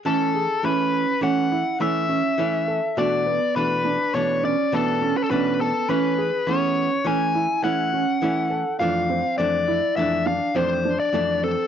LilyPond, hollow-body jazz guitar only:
\new Staff \with { instrumentName = "Hollow-body jazz guitar" } { \time 5/4 \key a \major \tempo 4 = 103 <e a cis'>8 r8 <e a e'>8 r8 <e a cis'>8 r8 <e a cis'>8 r8 <e a cis'>8 r8 | <b, e a d'>8 r8 <b, e a d'>8 r8 <b, e a d'>8 r8 <b, e a d'>8 r8 <b, e a d'>8 r8 | <e a cis'>8 r8 <e a b>8 r8 <e a cis'>8 r8 <e a cis'>8 r8 <e a cis'>8 r8 | <f, e a d'>8 r8 <f, e a d'>8 r8 <f, e a d'>8 r8 <f, e a d'>8 r8 <f, e a d'>8 r8 | }